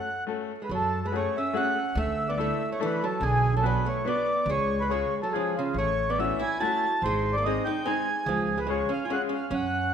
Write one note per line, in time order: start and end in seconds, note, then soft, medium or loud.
0.00 0.24 F#5 medium
0.27 0.50 A3 medium
0.27 0.50 C#4 soft
0.27 0.50 F#4 soft
0.27 0.51 A4 medium
0.62 0.69 G#3 soft
0.62 0.71 B4 medium
0.69 1.25 F#2 medium
0.69 1.01 F#3 medium
0.75 1.06 A4 medium
1.05 1.14 G#3 medium
1.05 1.15 B4 medium
1.12 1.35 A3 soft
1.12 1.35 A3 medium
1.12 1.35 C#4 soft
1.12 1.35 F#4 medium
1.12 1.35 G#4 medium
1.17 1.38 C#5 medium
1.37 1.55 C#4 medium
1.37 1.56 E5 medium
1.53 1.76 A3 medium
1.53 1.77 C#4 medium
1.53 1.95 C#4 medium
1.53 1.76 F#4 medium
1.53 1.76 G#4 medium
1.53 1.98 F#5 medium
1.95 2.50 D2 loud
1.95 2.26 A3 medium
1.95 2.30 E5 medium
2.29 2.38 B3 medium
2.29 2.39 D5 medium
2.37 2.60 A3 medium
2.37 2.69 A3 medium
2.37 2.60 D4 medium
2.37 2.60 E4 soft
2.37 2.60 A4 medium
2.37 2.70 E5 medium
2.72 2.80 A3 medium
2.72 2.81 C#5 medium
2.80 3.02 E3 medium
2.80 3.02 A3 medium
2.80 3.02 D4 medium
2.80 3.02 E4 medium
2.80 3.02 A4 medium
2.85 3.05 B4 medium
3.04 3.21 F#3 medium
3.04 3.23 A4 medium
3.21 3.75 B1 loud
3.21 3.52 D3 medium
3.21 3.55 G#4 loud
3.57 3.64 F#3 medium
3.57 3.65 A4 medium
3.62 3.85 F#3 medium
3.62 3.85 B3 medium
3.62 3.85 D4 soft
3.62 3.85 F#4 medium
3.62 3.85 B4 medium
3.67 3.88 B4 medium
3.86 4.04 A3 medium
3.86 4.07 C#5 medium
4.05 4.27 B3 medium
4.05 4.46 B3 medium
4.05 4.27 D4 medium
4.05 4.28 F#4 medium
4.05 4.27 B4 medium
4.05 4.50 D5 medium
4.46 5.02 C#2 loud
4.46 4.79 G#3 medium
4.50 4.82 C#5 loud
4.81 4.90 G#3 medium
4.81 4.91 B4 medium
4.89 5.12 G#3 soft
4.89 5.21 G#3 medium
4.89 5.12 C#4 soft
4.89 5.13 F4 soft
4.89 5.13 G#4 medium
4.89 5.20 C#5 medium
5.23 5.33 F#3 medium
5.23 5.33 A4 medium
5.32 5.55 F3 medium
5.32 5.55 G#3 medium
5.32 5.56 C#4 medium
5.32 5.56 F4 medium
5.32 5.56 G#4 medium
5.57 5.76 C#3 medium
5.57 5.77 F4 medium
5.74 6.30 A1 medium
5.74 6.10 C#5 loud
5.78 6.07 A3 medium
6.10 6.18 B3 medium
6.10 6.19 D5 medium
6.18 6.41 A3 medium
6.18 6.41 C#4 medium
6.18 6.40 C#4 medium
6.18 6.41 E4 soft
6.18 6.41 F#4 medium
6.18 6.42 E5 medium
6.40 6.59 E4 medium
6.40 6.62 G#5 medium
6.60 6.83 A3 medium
6.60 6.84 C#4 soft
6.60 6.84 E4 medium
6.60 7.00 F#4 medium
6.60 6.84 F#4 medium
6.60 7.04 A5 medium
7.02 7.56 G#1 medium
7.02 7.34 G#3 medium
7.02 7.36 C5 medium
7.33 7.44 D5 medium
7.38 7.46 A#3 medium
7.44 7.67 G#3 medium
7.44 7.66 C4 medium
7.44 7.67 C4 medium
7.44 7.68 D#4 soft
7.44 7.68 G#4 medium
7.44 7.67 D#5 medium
7.65 7.84 D#4 medium
7.65 7.86 G5 medium
7.86 8.08 G#3 medium
7.86 8.08 C4 medium
7.86 8.24 D#4 medium
7.86 8.08 D#4 soft
7.86 8.08 G#4 medium
7.86 8.29 G#5 medium
8.26 8.81 C#2 loud
8.26 8.58 F3 medium
8.26 8.59 G#4 loud
8.58 8.65 G#3 medium
8.58 8.69 B4 medium
8.67 8.88 G#3 medium
8.67 8.91 G#3 medium
8.67 8.91 C#4 soft
8.67 8.91 F4 medium
8.67 8.91 G#4 medium
8.67 8.92 C#5 medium
8.89 9.04 C#4 medium
8.89 9.05 F5 medium
9.04 9.10 F4 medium
9.04 9.10 G#5 medium
9.10 9.32 G#3 medium
9.10 9.16 C#4 medium
9.10 9.33 C#4 medium
9.10 9.33 F4 medium
9.10 9.33 G#4 medium
9.10 9.22 F#5 medium
9.29 9.49 C#4 medium
9.35 9.54 F5 medium
9.51 9.94 F#2 medium
9.51 9.94 C#4 medium
9.51 9.94 F#5 medium